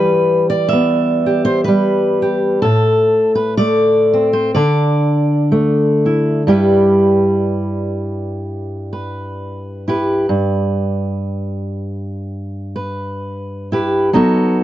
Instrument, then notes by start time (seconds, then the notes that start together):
steel-string acoustic guitar
Already playing: E3 G3 G4 B4
0.50 D5
0.68 E5
0.73 B3
1.26 G4
1.45 C5
1.64 G3 B4
2.22 G4
2.62 A2 A4
3.35 B4
3.57 A3 D5
4.14 C4
4.33 C5
4.55 D3 D5
5.52 A3
6.06 E4
6.47 G2 G3 E4 G4 B4
8.93 B4
9.88 E4 G4 B4
10.29 G2
12.76 B4
13.72 E4 G4 B4
14.13 F#3 B3 D#4 F#4 A4